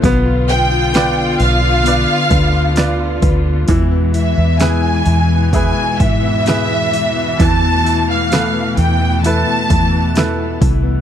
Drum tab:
HH |oooooooo|oooooooo|oooooooo|
SD |--o---o-|--o---o-|--o---o-|
BD |o----o-o|o---oo--|o----o-o|